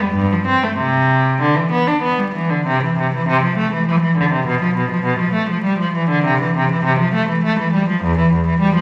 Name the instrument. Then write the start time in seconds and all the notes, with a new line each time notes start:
cello
0.01 G3
0.14 G2
0.32 F3
0.47 C4
0.63 A3
0.78 C3
1.41 D3
1.55 E3
1.72 B3
1.87 D4
2.02 B3
2.18 G3
2.35 E3
2.50 D3
2.67 C3
2.83 E3
2.99 C3
3.15 E3
3.28 C3
3.44 F3
3.58 A3
3.72 E3
3.87 F3
4.02 E3
4.17 D3
4.32 C3
4.47 B2
4.63 F3
4.77 B2
4.91 F3
5.05 B2
5.20 F3
5.34 A3
5.50 F3
5.64 G3
5.79 F3
5.95 E3
6.10 D3
6.25 C3
6.41 E3
6.57 C3
6.72 E3
6.85 C3
7.00 F3
7.14 A3
7.29 E3
7.44 A3
7.59 E3
7.73 G3
7.89 F3
8.03 E2
8.18 E3
8.33 E2
8.47 E3
8.60 G3
8.75 F3